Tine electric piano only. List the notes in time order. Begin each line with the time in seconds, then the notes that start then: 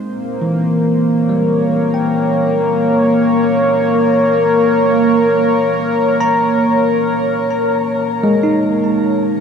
Already playing: G#3 C4
0.42 E3
1.29 G3
1.94 G5
6.20 A#5
8.24 G#3
8.43 D#4